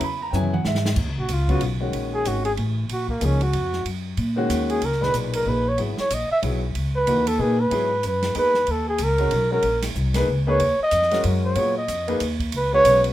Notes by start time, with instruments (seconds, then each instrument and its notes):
0.01 upright bass E2, grand piano B5, ride
0.22 grand piano A#5
0.31 upright bass F#2, grand piano C#3 F#3 B3 E4 G5, hi-hat pedal
0.36 grand piano G#5
0.43 mid tom
0.53 grand piano F#5, mid tom
0.64 upright bass G#2, grand piano E5, snare
0.75 snare
0.85 snare
0.96 upright bass D#2, kick, crash
1.07 upright bass C#2
1.18 upright bass A#1, muted trumpet F#4
1.28 upright bass C#2, hi-hat pedal, ride
1.33 muted trumpet F4
1.48 grand piano C#3 F#3 B3 F4, muted trumpet F#4, kick, ride
1.61 upright bass B1, ride
1.80 grand piano D#3 G#3 C#4 F#4
1.93 upright bass A#1, ride
2.15 muted trumpet G#4
2.25 upright bass G#1, grand piano D#3 G#3 C#4 F#4, muted trumpet F#4, hi-hat pedal, ride
2.45 muted trumpet G#4, ride
2.57 upright bass A1, ride
2.89 upright bass A#1, muted trumpet F#4, ride
3.09 muted trumpet A#3, kick
3.21 upright bass C#2, grand piano F3 A#3 D#4 G#4, hi-hat pedal, ride
3.25 muted trumpet C#4
3.41 muted trumpet F#4, ride
3.53 upright bass F2, ride
3.73 snare
3.85 upright bass F#2, ride
4.17 upright bass A#2, ride
4.36 grand piano D#3 G#3 C#4 F#4
4.49 upright bass D#2, hi-hat pedal, ride
4.70 muted trumpet G#4, ride
4.82 upright bass C#2, muted trumpet A#4, ride
4.92 snare
5.01 grand piano A#2 D#4 G#4 B4, muted trumpet B4, snare
5.14 upright bass B1, hi-hat pedal, ride
5.33 muted trumpet A#4, ride
5.46 upright bass A#1, grand piano A#3 D#4 G#4 B4, muted trumpet B4
5.69 muted trumpet C#5
5.77 upright bass G#1, grand piano F#3 B3 E4 G#4, ride
5.97 muted trumpet C#5, muted upright bass stroke, snare
6.10 upright bass A#1, muted trumpet D#5, hi-hat pedal, ride
6.30 muted trumpet E5, muted upright bass stroke
6.42 upright bass B1, grand piano F#3 B3 E4 G#4, ride
6.75 upright bass C#2, ride
6.96 muted trumpet B4
7.07 upright bass D#2, grand piano E3 A#3 D#4 F#4, hi-hat pedal, ride
7.27 muted trumpet A4, ride
7.38 upright bass A#2, grand piano A#3 D#4 G#4 B4, muted trumpet G#4
7.60 muted trumpet B4
7.70 upright bass G#2, grand piano F#3 B3 E4 G#4, ride
8.03 upright bass F#2, hi-hat pedal, ride
8.07 muted trumpet B4
8.22 snare, ride
8.34 upright bass E2, grand piano A#3 D#4 G#4 B4, ride
8.39 muted trumpet B4
8.54 snare
8.67 upright bass D#2, ride
8.71 muted trumpet A4
8.89 muted trumpet G#4
8.98 upright bass C#2, hi-hat pedal, ride
9.04 muted trumpet A#4
9.18 grand piano G#3 C#4 F#4 A#4, ride
9.31 upright bass B1, ride
9.50 grand piano G#3 C#4 F#4 A#4, muted trumpet A#4
9.63 upright bass A#1, ride
9.82 snare, ride
9.95 upright bass C2, hi-hat pedal
10.14 grand piano A#3 D#4 G#4 B4, snare, ride
10.27 upright bass C#2
10.47 grand piano A#3 D#4 G#4 B4, muted trumpet C#5
10.60 upright bass D#2, ride
10.80 muted trumpet D#5, muted upright bass stroke
10.91 upright bass F2, hi-hat pedal, ride
11.02 snare
11.11 grand piano G#3 C#4 F#4 A#4, snare, ride
11.24 upright bass F#2, ride
11.45 muted trumpet C#5
11.55 upright bass A#2, grand piano F#3 B3 F4 G#4, ride
11.78 muted trumpet D#5
11.88 upright bass F2, hi-hat pedal, ride
12.08 grand piano A#3 D#4 G#4 B4, ride
12.20 upright bass D#2, hi-hat pedal, ride
12.40 kick, ride
12.52 upright bass C#2, ride
12.57 muted trumpet B4
12.73 grand piano G#3 C#4 F#4 B4, muted trumpet C#5
12.85 upright bass B1, hi-hat pedal, ride
13.04 ride